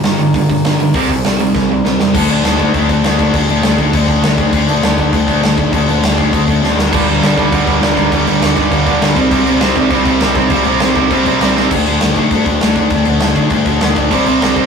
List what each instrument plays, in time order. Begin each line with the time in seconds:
0.04 picked electric bass G1, overdriven electric guitar G2 D3, snare, open hi-hat
0.19 picked electric bass G1, overdriven electric guitar G2 D3, open hi-hat
0.34 picked electric bass G1, overdriven electric guitar G2 D3, kick, open hi-hat
0.49 picked electric bass G1, overdriven electric guitar G2 D3, kick, open hi-hat
0.64 picked electric bass G1, overdriven electric guitar G2 D3, snare, open hi-hat
0.79 picked electric bass G1, overdriven electric guitar G2 D3, open hi-hat
0.94 picked electric bass C2, overdriven electric guitar C3 G3 C4, kick, open hi-hat
1.09 overdriven electric guitar C3 G3, kick, open hi-hat
1.24 picked electric bass C2, overdriven electric guitar C3 G3, snare, open hi-hat
1.38 picked electric bass C2, overdriven electric guitar C3 G3, open hi-hat
1.54 picked electric bass C2, overdriven electric guitar C3 G3, kick, snare
1.68 picked electric bass C2, overdriven electric guitar C3 G3
1.82 picked electric bass C2, overdriven electric guitar C3 G3, snare
1.97 picked electric bass E2, overdriven electric guitar C3 G3, snare
2.13 picked electric bass D2, overdriven electric guitar D3 A3 D4, kick, crash
2.28 picked electric bass D2, overdriven electric guitar D3 A3 D4, crash
2.43 picked electric bass D2, overdriven electric guitar D3 A3 D4, snare, crash
2.58 picked electric bass D2, overdriven electric guitar D3 A3 D4, kick, crash
2.73 picked electric bass D2, overdriven electric guitar D3 A3 D4, kick, crash
2.89 picked electric bass D2, overdriven electric guitar D3 A3 D4, kick, crash
3.03 picked electric bass D2, overdriven electric guitar D3 A3 D4, snare, crash
3.18 overdriven electric guitar D3 A3 D4, kick, crash
3.34 picked electric bass D2, overdriven electric guitar D3 A3 D4, kick, crash
3.48 picked electric bass D2, overdriven electric guitar D3 A3 D4, crash
3.63 picked electric bass D2, overdriven electric guitar D3 A3 D4, snare, crash
3.78 picked electric bass D2, overdriven electric guitar D3 A3 D4, kick, crash
3.92 picked electric bass D2, overdriven electric guitar D3 A3 D4, kick, crash
4.08 picked electric bass D2, overdriven electric guitar D3 A3 D4, kick, crash
4.22 picked electric bass D2, overdriven electric guitar D3 A3 D4, snare, crash
4.38 overdriven electric guitar D3 A3 D4, kick, crash
4.52 picked electric bass D2, overdriven electric guitar D3 A3 D4, kick, crash
4.67 picked electric bass D2, overdriven electric guitar D3 A3 D4, crash
4.82 picked electric bass D2, overdriven electric guitar D3 A3 D4, snare, crash
4.97 picked electric bass D2, overdriven electric guitar D3 A3 D4, kick, crash
5.12 picked electric bass D2, overdriven electric guitar D3 A3 D4, kick, crash
5.26 picked electric bass D2, overdriven electric guitar D3 A3 D4, kick, crash
5.41 picked electric bass D2, overdriven electric guitar D3 A3 D4, snare, crash
5.56 overdriven electric guitar D3 A3 D4, kick, crash
5.72 picked electric bass D2, overdriven electric guitar D3 A3 D4, kick, crash
5.87 picked electric bass D2, overdriven electric guitar D3 A3 D4, crash
6.01 picked electric bass D2, overdriven electric guitar D3 A3 D4, snare, crash
6.16 picked electric bass D2, overdriven electric guitar D3 A3 D4, kick, crash
6.30 picked electric bass D2, overdriven electric guitar D3 A3 D4, kick, crash
6.46 picked electric bass D2, overdriven electric guitar D3 A3 D4, kick, crash
6.61 picked electric bass D2, overdriven electric guitar D3 A3 D4, snare
6.75 picked electric bass D2, overdriven electric guitar G2 D3 G3, snare
6.91 picked electric bass D2, overdriven electric guitar G2 D3 G3, kick, crash
7.05 picked electric bass D2, overdriven electric guitar G2 D3 G3, crash
7.21 picked electric bass D2, overdriven electric guitar G2 D3 G3, snare, crash
7.36 picked electric bass D2, overdriven electric guitar G2 D3 G3, kick, crash
7.51 picked electric bass D2, overdriven electric guitar G2 D3 G3, kick, crash
7.65 picked electric bass D2, overdriven electric guitar G2 D3 G3, kick, crash
7.80 picked electric bass D2, overdriven electric guitar G2 D3 G3, snare, crash
7.96 overdriven electric guitar G2 D3 G3, kick, crash
8.11 picked electric bass D2, overdriven electric guitar G2 D3 G3, kick, crash
8.25 picked electric bass D2, overdriven electric guitar G2 D3 G3, crash
8.40 picked electric bass D2, overdriven electric guitar G2 D3 G3, snare, crash
8.56 picked electric bass D2, overdriven electric guitar G2 D3 G3, kick, crash
8.71 picked electric bass D2, overdriven electric guitar G2 D3 G3, kick, crash
8.86 picked electric bass D2, overdriven electric guitar G2 D3 G3, kick, crash
9.01 picked electric bass D2, overdriven electric guitar G2 D3 G3, snare, crash
9.16 picked electric bass C2, overdriven electric guitar C3 G3 C4, kick, crash
9.31 picked electric bass C2, overdriven electric guitar C3 G3 C4, kick, crash
9.45 picked electric bass C2, overdriven electric guitar C3 G3 C4, crash
9.60 picked electric bass C2, overdriven electric guitar C3 G3 C4, snare, crash
9.75 picked electric bass C2, overdriven electric guitar C3 G3 C4, kick, crash
9.90 picked electric bass C2, overdriven electric guitar C3 G3 C4, kick, crash
10.05 picked electric bass C2, overdriven electric guitar C3 G3 C4, kick, crash
10.20 picked electric bass C2, overdriven electric guitar C3 G3 C4, snare, crash
10.35 overdriven electric guitar C3 G3 C4, kick, crash
10.50 picked electric bass C2, overdriven electric guitar C3 G3 C4, kick, crash
10.65 picked electric bass C2, overdriven electric guitar C3 G3 C4, crash
10.80 picked electric bass C2, overdriven electric guitar C3 G3 C4, snare, crash
10.95 picked electric bass C2, overdriven electric guitar C3 G3 C4, kick, crash
11.11 picked electric bass C2, overdriven electric guitar C3 G3 C4, kick, crash
11.25 picked electric bass C2, overdriven electric guitar C3 G3 C4, kick, crash
11.40 picked electric bass C2, overdriven electric guitar C3 G3 C4, snare, crash
11.57 overdriven electric guitar C3 G3 C4, snare
11.70 picked electric bass D2, overdriven electric guitar D3 A3 D4, kick, crash
11.85 picked electric bass D2, overdriven electric guitar D3 A3 D4, crash
12.01 picked electric bass D2, overdriven electric guitar D3 A3 D4, snare, crash
12.16 picked electric bass D3, overdriven electric guitar D3 A3 D4, kick, crash
12.31 picked electric bass G2, overdriven electric guitar D3 A3 D4, kick, crash
12.45 picked electric bass D2, overdriven electric guitar D3 A3 D4, kick, crash
12.60 picked electric bass D2, overdriven electric guitar D3 A3 D4, snare, crash
12.75 overdriven electric guitar D3 A3 D4, kick, crash
12.90 picked electric bass D2, overdriven electric guitar D3 A3 D4, kick, crash
13.05 picked electric bass D2, overdriven electric guitar D3 A3 D4, crash
13.20 picked electric bass D2, overdriven electric guitar D3 A3 D4, snare, crash
13.35 picked electric bass D3, overdriven electric guitar D3 A3 D4, kick, crash
13.50 picked electric bass G2, overdriven electric guitar D3 A3 D4, kick, crash
13.66 picked electric bass D2, overdriven electric guitar D3 A3 D4, kick, crash
13.81 picked electric bass D2, overdriven electric guitar D3 A3 D4, snare, crash
13.95 overdriven electric guitar D3 A3 D4, kick, crash
14.11 picked electric bass C2, overdriven electric guitar C3 G3 C4, kick, crash
14.26 picked electric bass C2, overdriven electric guitar C3 G3 C4, crash
14.40 picked electric bass C2, overdriven electric guitar C3 G3 C4, snare, crash
14.56 picked electric bass C3, overdriven electric guitar C3 G3 C4, kick, crash